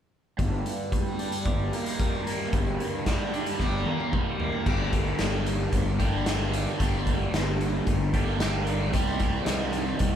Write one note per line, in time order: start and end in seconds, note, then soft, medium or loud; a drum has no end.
0.38 0.62 G1 medium
0.38 2.53 G2 medium
0.38 2.87 D3 soft
0.38 kick medium
0.38 closed hi-hat soft
0.66 closed hi-hat soft
0.92 2.00 G3 medium
0.92 kick medium
0.92 closed hi-hat medium
1.00 1.62 G3 medium
1.19 3.33 D4 medium
1.19 closed hi-hat soft
1.32 closed hi-hat medium
1.45 1.69 G1 medium
1.45 2.80 G4 medium
1.45 kick medium
1.45 closed hi-hat soft
1.62 3.50 G3 medium
1.73 2.26 A#3 medium
1.73 closed hi-hat medium
1.86 closed hi-hat medium
1.99 3.06 G3 medium
1.99 kick loud
1.99 closed hi-hat medium
2.27 9.43 G2 medium
2.27 3.60 A#3 medium
2.27 closed hi-hat medium
2.53 2.76 G1 medium
2.53 3.87 G2 medium
2.53 kick loud
2.53 closed hi-hat medium
2.80 closed hi-hat soft
2.87 10.02 D3 medium
3.06 4.12 G3 medium
3.06 kick medium
3.06 snare medium
3.06 closed hi-hat medium
3.33 4.67 D4 medium
3.33 closed hi-hat soft
3.46 4.12 G3 medium
3.46 closed hi-hat medium
3.59 3.83 G1 medium
3.59 4.67 G4 medium
3.59 kick medium
3.59 snare soft
3.86 4.39 A#3 medium
3.86 high tom medium
4.00 high tom medium
4.12 10.16 G3 medium
4.12 4.66 G3 medium
4.12 kick medium
4.12 mid tom medium
4.40 4.67 A#3 medium
4.40 floor tom medium
4.52 floor tom medium
4.66 5.12 G1 medium
4.66 5.98 G2 medium
4.66 5.98 D3 medium
4.66 6.01 G3 medium
4.66 5.99 A#3 medium
4.66 5.99 D4 medium
4.66 5.99 G4 medium
4.66 kick medium
4.66 crash medium
4.93 kick medium
4.93 closed hi-hat medium
5.19 5.66 G1 medium
5.19 snare medium
5.19 closed hi-hat medium
5.46 closed hi-hat medium
5.72 6.65 G1 medium
5.72 kick medium
5.72 closed hi-hat medium
5.99 6.24 G2 medium
5.99 6.26 D3 medium
5.99 6.27 G3 medium
5.99 6.25 A#3 medium
5.99 6.25 D4 medium
5.99 6.28 G4 medium
5.99 kick medium
5.99 closed hi-hat soft
6.26 6.78 G2 medium
6.26 6.78 D3 medium
6.26 6.80 G3 medium
6.26 6.79 A#3 medium
6.26 6.79 D4 medium
6.26 6.82 G4 medium
6.26 snare medium
6.26 closed hi-hat medium
6.54 closed hi-hat medium
6.79 7.26 G1 medium
6.79 8.12 G2 medium
6.79 8.12 D3 medium
6.79 8.15 G3 medium
6.79 8.13 A#3 medium
6.79 8.13 D4 medium
6.79 8.13 G4 medium
6.79 kick medium
6.79 closed hi-hat medium
7.07 kick medium
7.07 closed hi-hat medium
7.32 7.79 G1 medium
7.32 snare medium
7.32 closed hi-hat medium
7.61 closed hi-hat soft
7.87 8.94 G1 loud
7.87 kick medium
7.87 closed hi-hat medium
8.14 8.39 G2 medium
8.14 8.39 D3 medium
8.14 8.41 G3 medium
8.14 8.39 A#3 medium
8.14 8.39 D4 medium
8.14 8.42 G4 medium
8.14 kick medium
8.14 closed hi-hat medium
8.40 8.92 G2 medium
8.40 8.92 D3 medium
8.40 8.94 G3 medium
8.40 8.93 A#3 medium
8.40 8.93 D4 medium
8.40 8.96 G4 medium
8.40 snare loud
8.40 closed hi-hat medium
8.67 closed hi-hat soft
8.93 9.40 C2 medium
8.93 10.16 C3 medium
8.93 10.16 D#3 medium
8.93 10.16 G3 medium
8.93 10.16 C4 medium
8.93 10.16 G4 medium
8.93 kick medium
8.93 closed hi-hat medium
9.20 kick medium
9.20 closed hi-hat soft
9.46 9.93 C2 medium
9.46 snare medium
9.46 closed hi-hat medium
9.73 closed hi-hat medium
9.99 10.16 C2 medium
9.99 kick medium
9.99 closed hi-hat medium